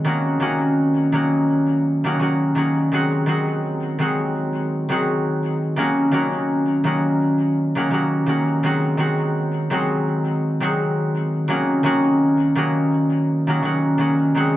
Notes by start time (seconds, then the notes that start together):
Already playing: G#3
0.05 D#3 F#3 A#3 C#4 F#4
0.40 D#3 F#3 A#3 C#4 F#4
1.12 D#3 F#3 A#3 C#4 F#4
2.04 D#3 F#3 A#3 C#4 F#4
2.19 D#3 F#3 A#3 C#4 F#4
2.55 D#3 F#3 A#3 C#4 F#4
2.92 D#3 F#3 G#3 C4 F#4
3.26 D#3 F#3 G#3 C4 F#4
3.98 D#3 F#3 G#3 C4 F#4
4.89 D#3 F#3 G#3 C4 F#4
5.76 D#3 F#3 A#3 C#4 F#4
6.11 D#3 F#3 A#3 C#4 F#4
6.84 D#3 F#3 A#3 C#4 F#4
7.75 D#3 F#3 A#3 C#4 F#4
7.91 D#3 F#3 A#3 C#4 F#4
8.26 D#3 F#3 A#3 C#4 F#4
8.63 D#3 F#3 G#3 C4 F#4
8.97 D#3 F#3 G#3 C4 F#4
9.70 D#3 F#3 G#3 C4 F#4
10.60 D#3 F#3 G#3 C4 F#4
11.48 D#3 F#3 A#3 C#4 F#4
11.83 D#3 F#3 A#3 C#4 F#4
12.55 D#3 F#3 A#3 C#4 F#4
13.47 D#3 F#3 A#3 C#4 F#4
13.62 D#3 F#3 A#3 C#4 F#4
13.98 D#3 F#3 A#3 C#4 F#4
14.35 D#3 F#3 G#3 C4 F#4